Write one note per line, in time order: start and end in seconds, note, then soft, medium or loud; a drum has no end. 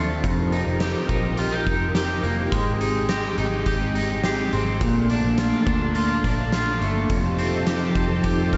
0.00 0.22 D#2 medium
0.00 0.24 D3 medium
0.00 2.49 F3 medium
0.00 0.30 A3 medium
0.00 0.52 C4 medium
0.00 4.77 C4 medium
0.00 0.22 D4 medium
0.00 0.55 F4 medium
0.00 0.49 C7 medium
0.24 0.65 F1 medium
0.24 2.53 F2 medium
0.24 2.50 D#4 medium
0.24 2.50 G4 medium
0.24 2.50 A#4 medium
0.24 kick loud
0.24 closed hi-hat medium
0.52 1.09 D#4 medium
0.52 closed hi-hat soft
0.67 0.94 F1 medium
0.80 1.38 G4 medium
0.80 snare loud
0.80 closed hi-hat medium
1.09 1.64 A#1 medium
1.09 1.66 D#4 medium
1.09 kick medium
1.09 closed hi-hat soft
1.37 1.52 F4 medium
1.37 closed hi-hat medium
1.52 1.94 G4 medium
1.67 2.21 F1 medium
1.67 2.80 D#4 medium
1.67 kick medium
1.67 closed hi-hat soft
1.95 3.09 G4 medium
1.95 snare medium
1.95 closed hi-hat medium
2.23 2.51 F1 medium
2.23 2.58 A#3 medium
2.23 closed hi-hat soft
2.52 3.34 G#1 medium
2.52 4.81 G#3 medium
2.52 4.79 G#3 medium
2.52 4.79 G4 medium
2.52 kick loud
2.52 closed hi-hat medium
2.81 3.37 D#4 medium
2.81 closed hi-hat soft
3.09 3.65 G4 medium
3.09 4.23 A#6 soft
3.09 snare loud
3.09 closed hi-hat medium
3.38 3.65 G#1 medium
3.38 3.94 D#4 medium
3.38 closed hi-hat soft
3.66 4.48 G#1 loud
3.66 4.23 G4 medium
3.66 kick medium
3.66 closed hi-hat medium
3.95 4.87 D#4 soft
3.95 closed hi-hat soft
4.24 4.87 G4 medium
4.24 5.07 C7 medium
4.24 snare medium
4.24 closed hi-hat medium
4.53 4.80 G#1 medium
4.53 4.87 C4 medium
4.53 closed hi-hat soft
4.81 5.22 A#1 loud
4.81 7.10 A#2 medium
4.81 7.08 A3 medium
4.81 7.07 A#3 medium
4.81 7.07 D4 medium
4.81 kick loud
4.81 closed hi-hat medium
5.10 5.66 D4 medium
5.10 closed hi-hat soft
5.24 5.51 A#1 medium
5.38 5.95 F4 medium
5.38 snare loud
5.38 closed hi-hat medium
5.67 6.21 D2 medium
5.67 6.23 D4 medium
5.67 kick medium
5.67 closed hi-hat soft
5.95 6.53 F4 medium
5.95 closed hi-hat medium
6.24 6.79 A#1 medium
6.24 7.16 D4 medium
6.24 kick medium
6.24 closed hi-hat soft
6.52 7.67 F4 medium
6.52 snare medium
6.52 closed hi-hat medium
6.81 7.08 G1 medium
6.81 7.70 A3 medium
6.81 closed hi-hat soft
7.10 7.92 F1 loud
7.10 8.57 F2 medium
7.10 8.57 F3 medium
7.10 8.57 C4 medium
7.10 8.57 D#4 medium
7.10 8.57 G4 medium
7.10 8.57 A4 medium
7.10 kick loud
7.10 closed hi-hat medium
7.39 7.95 C4 medium
7.39 closed hi-hat soft
7.66 8.24 G4 medium
7.66 snare loud
7.66 closed hi-hat medium
7.95 8.23 F1 medium
7.95 8.52 C4 medium
7.95 kick medium
7.95 closed hi-hat soft
8.24 8.57 F1 loud
8.24 8.57 G4 medium
8.24 kick medium
8.24 closed hi-hat medium
8.53 8.57 C4 soft
8.53 8.57 F6 soft
8.53 kick medium
8.53 closed hi-hat soft